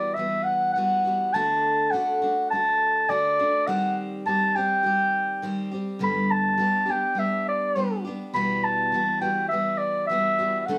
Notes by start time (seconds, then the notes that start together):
Already playing: E3 G3 B3 F#4 D5
0.14 E3 G3 E5
0.19 B3 F#4
0.44 F#5
0.73 E3 G3 F#5
0.78 B3 F#4
1.05 E3 G3 B3 F#4
1.34 D3 A3 D4 F#4 A5
1.91 D3 A3 D4 F#4 F#5
2.22 A3 D4 F#4
2.50 D3 A3 D4 A5
2.55 F#4
3.09 D3 A3 D4 F#4 D5
3.39 A3 D4 F#4
3.67 D#3 G3 C4 G4 F#5
4.26 D#3 G3 C4 G4 A5
4.56 G3 C4 G4 G5
4.83 D#3 G3 C4 G4
5.42 D#3 G3 C4 G4
5.71 G3 C4 G4
5.99 G2 D3 G3 B3 D4 G4
6.04 B5
6.31 A5
6.58 G3 B3 D4 G4
6.86 G3 B3 D4 G4
6.91 G5
7.15 G3 B3 D4 G4 E5
7.49 D5
7.76 G3 B3 D4 G4
8.05 G3 B3 D4 G4
8.34 E2 B2 E3 G3 B3 F#4 B5
8.64 A5
8.92 E3 G3 B3 F#4
9.21 E3 G3 B3 F#4 G5
9.49 E3 G3 E5
9.53 B3 F#4
9.78 D5
10.07 E3 E5
10.11 G3 B3 F#4
10.39 E3 G3 B3 F#4
10.60 E5
10.66 D3 A3 D4 F#5
10.71 F#4